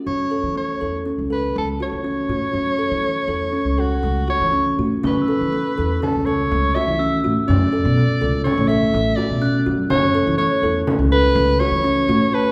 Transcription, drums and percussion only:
5.04 frame drum medium
6.03 frame drum medium
6.53 frame drum soft
6.77 frame drum soft
7.26 frame drum soft
7.50 frame drum medium
8.46 frame drum medium
8.95 frame drum soft
9.18 frame drum soft
9.67 frame drum soft
9.90 frame drum medium
10.87 frame drum medium
11.36 frame drum soft
11.60 frame drum soft
12.09 frame drum soft

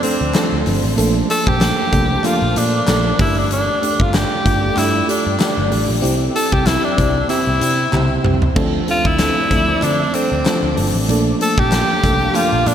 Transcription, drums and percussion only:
0.03 closed hi-hat medium
0.34 snare loud
0.34 clap medium
0.34 closed hi-hat medium
0.34 tambourine medium
0.66 open hi-hat medium
0.98 closed hi-hat loud
1.30 closed hi-hat medium
1.47 kick loud
1.61 snare loud
1.61 clap medium
1.61 closed hi-hat medium
1.61 tambourine medium
1.92 kick medium
1.92 closed hi-hat medium
2.24 clap medium
2.24 closed hi-hat medium
2.56 closed hi-hat medium
2.87 snare loud
2.87 clap medium
2.87 closed hi-hat medium
2.87 tambourine medium
3.19 kick loud
3.19 open hi-hat medium
3.51 closed hi-hat loud
3.83 closed hi-hat medium
4.00 kick loud
4.14 snare loud
4.14 clap medium
4.14 closed hi-hat medium
4.14 tambourine medium
4.46 kick medium
4.46 closed hi-hat medium
4.77 clap medium
4.77 closed hi-hat medium
5.09 closed hi-hat medium
5.40 snare loud
5.40 clap medium
5.40 closed hi-hat medium
5.40 tambourine medium
5.72 open hi-hat loud
6.04 closed hi-hat loud
6.36 closed hi-hat medium
6.52 kick medium
6.67 snare loud
6.67 clap medium
6.67 closed hi-hat medium
6.67 tambourine medium
6.98 kick medium
6.98 closed hi-hat medium
7.30 clap medium
7.30 closed hi-hat medium
7.61 closed hi-hat medium
7.93 clap medium
7.93 high tom medium
8.24 mid tom loud
8.42 floor tom medium
8.56 kick loud
8.56 crash medium
8.88 closed hi-hat medium
9.05 kick loud
9.19 snare loud
9.19 clap medium
9.19 closed hi-hat medium
9.19 tambourine medium
9.51 kick medium
9.51 closed hi-hat medium
9.82 clap medium
9.82 closed hi-hat medium
10.14 closed hi-hat medium
10.45 snare loud
10.45 clap medium
10.45 closed hi-hat medium
10.45 tambourine medium
10.77 open hi-hat loud
11.09 closed hi-hat loud
11.41 closed hi-hat medium
11.58 kick loud
11.72 snare loud
11.72 clap medium
11.72 closed hi-hat medium
11.72 tambourine medium
12.04 kick medium
12.04 closed hi-hat medium
12.35 clap medium
12.35 closed hi-hat medium
12.66 closed hi-hat medium

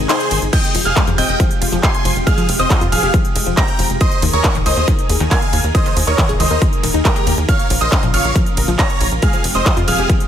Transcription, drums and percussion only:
0.09 clap loud
0.09 closed hi-hat medium
0.20 closed hi-hat medium
0.31 open hi-hat medium
0.31 ride medium
0.42 closed hi-hat medium
0.53 kick loud
0.53 closed hi-hat medium
0.53 crash medium
0.64 closed hi-hat medium
0.75 open hi-hat loud
0.75 ride medium
0.86 closed hi-hat medium
0.96 kick loud
0.96 clap loud
0.96 closed hi-hat medium
1.07 closed hi-hat medium
1.18 open hi-hat medium
1.18 ride medium
1.29 closed hi-hat medium
1.40 kick loud
1.40 closed hi-hat medium
1.51 closed hi-hat medium
1.62 open hi-hat loud
1.62 ride medium
1.73 closed hi-hat medium
1.83 kick loud
1.83 clap loud
1.83 closed hi-hat medium
1.94 closed hi-hat medium
2.05 open hi-hat medium
2.05 ride medium
2.16 closed hi-hat medium
2.27 kick loud
2.27 closed hi-hat medium
2.38 closed hi-hat medium
2.49 open hi-hat loud
2.49 ride medium
2.60 closed hi-hat medium
2.70 kick loud
2.70 clap loud
2.70 closed hi-hat medium
2.81 closed hi-hat medium
2.92 open hi-hat loud
2.92 ride medium
3.03 closed hi-hat medium
3.14 kick loud
3.14 closed hi-hat medium
3.25 closed hi-hat medium
3.36 open hi-hat loud
3.36 ride medium
3.46 closed hi-hat medium
3.57 kick loud
3.57 clap loud
3.57 closed hi-hat medium
3.68 closed hi-hat medium
3.79 open hi-hat medium
3.79 ride medium
3.90 closed hi-hat medium
4.01 kick loud
4.01 closed hi-hat medium
4.11 closed hi-hat medium
4.22 open hi-hat loud
4.22 ride medium
4.33 closed hi-hat soft
4.44 kick loud
4.44 clap loud
4.44 closed hi-hat medium
4.55 closed hi-hat medium
4.66 open hi-hat loud
4.66 ride medium
4.77 closed hi-hat medium
4.88 kick loud
4.88 closed hi-hat medium
4.99 closed hi-hat medium
5.09 open hi-hat loud
5.09 ride medium
5.20 closed hi-hat medium
5.31 kick loud
5.31 clap loud
5.31 closed hi-hat medium
5.42 closed hi-hat medium
5.53 open hi-hat loud
5.53 ride medium
5.64 closed hi-hat medium
5.75 kick loud
5.75 closed hi-hat medium
5.86 closed hi-hat soft
5.97 open hi-hat loud
5.97 ride medium
6.18 kick loud
6.18 clap loud
6.18 closed hi-hat medium
6.29 closed hi-hat medium
6.40 open hi-hat loud
6.40 ride medium
6.51 closed hi-hat medium
6.62 kick loud
6.62 closed hi-hat medium
6.73 closed hi-hat soft
6.83 open hi-hat loud
6.83 ride medium
6.94 closed hi-hat soft
7.05 kick loud
7.05 clap loud
7.05 closed hi-hat medium
7.16 closed hi-hat medium
7.27 open hi-hat medium
7.27 ride medium
7.38 closed hi-hat soft
7.49 kick loud
7.49 closed hi-hat medium
7.59 closed hi-hat medium
7.70 open hi-hat loud
7.70 ride medium
7.81 closed hi-hat soft
7.92 kick loud
7.92 clap loud
7.92 closed hi-hat medium
8.03 closed hi-hat medium
8.14 open hi-hat medium
8.14 ride medium
8.25 closed hi-hat soft
8.35 kick loud
8.35 closed hi-hat medium
8.46 closed hi-hat medium
8.57 open hi-hat loud
8.57 ride medium
8.68 closed hi-hat medium
8.79 kick loud
8.79 clap loud
8.79 closed hi-hat medium
8.90 closed hi-hat medium
9.01 open hi-hat medium
9.01 ride medium
9.12 closed hi-hat soft
9.22 kick loud
9.22 closed hi-hat medium
9.33 closed hi-hat medium
9.44 open hi-hat loud
9.44 ride medium
9.55 closed hi-hat medium
9.66 kick loud
9.66 clap loud
9.66 closed hi-hat medium
9.77 closed hi-hat medium
9.88 open hi-hat loud
9.88 ride medium
9.99 closed hi-hat medium
10.09 kick loud
10.09 closed hi-hat medium
10.20 closed hi-hat medium

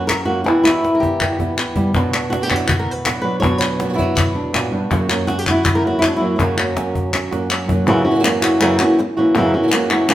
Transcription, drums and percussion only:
0.09 cajon slap medium
0.09 clap medium
0.47 cajon slap medium
0.47 clap soft
0.65 cajon slap medium
0.65 clap medium
0.84 cajon slap medium
1.03 cajon bass medium
1.20 cajon bass medium
1.20 clap medium
1.40 cajon bass medium
1.58 clap medium
1.76 cajon bass medium
1.94 cajon bass medium
1.94 clap soft
2.13 clap medium
2.33 cajon slap medium
2.50 cajon bass medium
2.50 clap medium
2.68 cajon bass medium
2.68 clap medium
3.05 cajon slap medium
3.05 clap medium
3.43 cajon bass medium
3.43 clap soft
3.61 clap medium
3.80 cajon slap medium
3.99 cajon bass medium
4.17 cajon bass medium
4.17 clap medium
4.54 cajon slap medium
4.54 clap medium
4.91 cajon bass medium
4.91 clap soft
5.10 clap medium
5.28 cajon slap medium
5.47 cajon bass medium
5.47 clap medium
5.65 cajon bass medium
5.65 clap medium
6.03 cajon slap medium
6.03 clap medium
6.39 cajon bass medium
6.39 clap soft
6.58 clap medium
6.77 cajon slap medium
6.95 cajon bass medium
7.13 cajon slap medium
7.13 clap medium
7.32 cajon slap medium
7.50 clap medium
7.69 cajon bass medium
7.87 clap soft
8.25 clap medium
8.43 clap medium
8.61 clap medium
8.79 clap medium
9.35 clap soft
9.72 clap medium
9.90 clap medium
10.09 clap medium

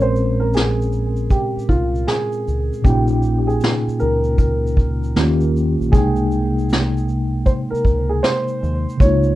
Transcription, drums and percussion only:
0.00 shaker soft
0.16 shaker soft
0.53 snare loud
0.53 closed hi-hat medium
0.53 shaker medium
0.82 shaker soft
0.92 shaker soft
1.16 shaker soft
1.30 kick medium
1.30 closed hi-hat medium
1.30 shaker medium
1.59 shaker soft
1.69 kick medium
1.69 shaker soft
1.95 shaker soft
2.08 snare loud
2.08 closed hi-hat medium
2.08 shaker medium
2.32 shaker soft
2.48 shaker soft
2.73 shaker soft
2.85 kick loud
2.85 closed hi-hat medium
2.85 shaker medium
3.07 shaker soft
3.23 shaker soft
3.49 shaker soft
3.60 snare loud
3.60 closed hi-hat medium
3.60 shaker medium
3.89 shaker soft
4.00 shaker soft
4.24 shaker soft
4.38 kick medium
4.38 closed hi-hat medium
4.38 shaker medium
4.67 shaker soft
4.77 kick medium
4.77 shaker soft
5.03 shaker soft
5.16 snare loud
5.16 closed hi-hat medium
5.16 shaker medium
5.41 shaker soft
5.56 shaker soft
5.82 shaker soft
5.93 kick loud
5.93 closed hi-hat medium
5.93 shaker medium
6.16 shaker soft
6.31 shaker soft
6.59 shaker soft
6.69 snare loud
6.69 closed hi-hat medium
6.69 shaker medium
6.97 shaker soft
7.08 shaker soft
7.46 kick medium
7.46 closed hi-hat medium
7.46 shaker medium
7.75 shaker soft
7.85 kick medium
7.85 shaker soft
8.24 snare loud
8.24 closed hi-hat medium
8.24 shaker medium
8.48 shaker soft
8.64 shaker soft
8.89 shaker soft
9.00 kick loud
9.00 closed hi-hat medium
9.00 shaker medium
9.23 shaker soft

